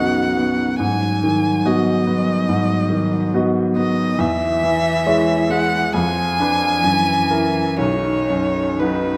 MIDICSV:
0, 0, Header, 1, 4, 480
1, 0, Start_track
1, 0, Key_signature, 5, "major"
1, 0, Tempo, 858369
1, 443, Time_signature, 4, 2, 24, 8
1, 3321, Tempo, 895522
1, 3801, Tempo, 988468
1, 4937, End_track
2, 0, Start_track
2, 0, Title_t, "Violin"
2, 0, Program_c, 0, 40
2, 0, Note_on_c, 0, 78, 58
2, 438, Note_off_c, 0, 78, 0
2, 442, Note_on_c, 0, 80, 57
2, 925, Note_on_c, 0, 75, 53
2, 933, Note_off_c, 0, 80, 0
2, 1868, Note_off_c, 0, 75, 0
2, 2107, Note_on_c, 0, 75, 59
2, 2350, Note_on_c, 0, 76, 71
2, 2358, Note_off_c, 0, 75, 0
2, 3079, Note_on_c, 0, 78, 71
2, 3088, Note_off_c, 0, 76, 0
2, 3314, Note_on_c, 0, 80, 77
2, 3322, Note_off_c, 0, 78, 0
2, 4265, Note_off_c, 0, 80, 0
2, 4269, Note_on_c, 0, 73, 60
2, 4749, Note_on_c, 0, 71, 44
2, 4757, Note_off_c, 0, 73, 0
2, 4937, Note_off_c, 0, 71, 0
2, 4937, End_track
3, 0, Start_track
3, 0, Title_t, "Grand piano"
3, 0, Program_c, 1, 0
3, 0, Control_c, 1, 64, 127
3, 0, Note_on_c, 1, 35, 32
3, 0, Note_on_c, 1, 42, 26
3, 0, Note_on_c, 1, 59, 28
3, 0, Note_on_c, 1, 66, 30
3, 0, Note_on_c, 1, 75, 32
3, 104, Note_off_c, 1, 42, 0
3, 178, Note_off_c, 1, 59, 0
3, 180, Note_off_c, 1, 66, 0
3, 180, Note_off_c, 1, 75, 0
3, 208, Note_on_c, 1, 59, 30
3, 419, Note_off_c, 1, 35, 0
3, 445, Note_on_c, 1, 44, 39
3, 446, Note_off_c, 1, 59, 0
3, 454, Control_c, 1, 64, 0
3, 548, Control_c, 1, 64, 127
3, 691, Note_on_c, 1, 51, 31
3, 924, Note_on_c, 1, 59, 32
3, 925, Note_on_c, 1, 66, 31
3, 928, Note_on_c, 1, 75, 34
3, 1069, Note_off_c, 1, 51, 0
3, 1138, Note_off_c, 1, 59, 0
3, 1138, Note_off_c, 1, 66, 0
3, 1140, Note_off_c, 1, 75, 0
3, 1158, Note_on_c, 1, 59, 33
3, 1371, Note_off_c, 1, 44, 0
3, 1391, Note_on_c, 1, 44, 39
3, 1533, Note_off_c, 1, 59, 0
3, 1620, Note_on_c, 1, 51, 31
3, 1867, Note_on_c, 1, 59, 35
3, 1870, Note_on_c, 1, 66, 36
3, 1874, Note_on_c, 1, 75, 37
3, 2008, Note_off_c, 1, 51, 0
3, 2086, Note_off_c, 1, 59, 0
3, 2088, Note_off_c, 1, 66, 0
3, 2090, Note_off_c, 1, 75, 0
3, 2103, Note_on_c, 1, 59, 37
3, 2323, Note_off_c, 1, 44, 0
3, 2342, Note_on_c, 1, 40, 49
3, 2344, Note_off_c, 1, 59, 0
3, 2356, Control_c, 1, 64, 0
3, 2442, Control_c, 1, 64, 127
3, 2591, Note_on_c, 1, 52, 36
3, 2830, Note_on_c, 1, 56, 37
3, 2833, Note_on_c, 1, 64, 39
3, 2833, Note_on_c, 1, 73, 39
3, 2976, Note_off_c, 1, 52, 0
3, 3050, Note_off_c, 1, 56, 0
3, 3052, Note_off_c, 1, 64, 0
3, 3052, Note_off_c, 1, 73, 0
3, 3072, Note_on_c, 1, 56, 37
3, 3295, Note_off_c, 1, 40, 0
3, 3320, Note_off_c, 1, 56, 0
3, 3323, Note_on_c, 1, 41, 47
3, 3328, Control_c, 1, 64, 0
3, 3402, Control_c, 1, 64, 127
3, 3568, Note_on_c, 1, 62, 34
3, 3569, Note_on_c, 1, 71, 36
3, 3782, Note_off_c, 1, 62, 0
3, 3783, Note_off_c, 1, 71, 0
3, 3787, Note_off_c, 1, 41, 0
3, 3802, Note_on_c, 1, 42, 44
3, 3808, Control_c, 1, 64, 0
3, 3885, Control_c, 1, 64, 127
3, 4030, Note_on_c, 1, 64, 33
3, 4031, Note_on_c, 1, 70, 35
3, 4250, Note_off_c, 1, 64, 0
3, 4250, Note_off_c, 1, 70, 0
3, 4255, Note_off_c, 1, 42, 0
3, 4262, Note_on_c, 1, 35, 39
3, 4278, Control_c, 1, 64, 0
3, 4375, Control_c, 1, 64, 127
3, 4512, Note_on_c, 1, 42, 29
3, 4759, Note_on_c, 1, 54, 29
3, 4761, Note_on_c, 1, 71, 33
3, 4762, Note_on_c, 1, 63, 28
3, 4901, Note_off_c, 1, 42, 0
3, 4937, Note_off_c, 1, 35, 0
3, 4937, Note_off_c, 1, 54, 0
3, 4937, Note_off_c, 1, 63, 0
3, 4937, Note_off_c, 1, 71, 0
3, 4937, End_track
4, 0, Start_track
4, 0, Title_t, "Cello"
4, 0, Program_c, 2, 42
4, 0, Note_on_c, 2, 51, 33
4, 423, Note_off_c, 2, 51, 0
4, 448, Note_on_c, 2, 54, 37
4, 2326, Note_off_c, 2, 54, 0
4, 2351, Note_on_c, 2, 52, 47
4, 3299, Note_off_c, 2, 52, 0
4, 3323, Note_on_c, 2, 53, 47
4, 3792, Note_off_c, 2, 53, 0
4, 3802, Note_on_c, 2, 52, 44
4, 4273, Note_on_c, 2, 51, 37
4, 4280, Note_off_c, 2, 52, 0
4, 4753, Note_off_c, 2, 51, 0
4, 4756, Note_on_c, 2, 51, 41
4, 4937, Note_off_c, 2, 51, 0
4, 4937, End_track
0, 0, End_of_file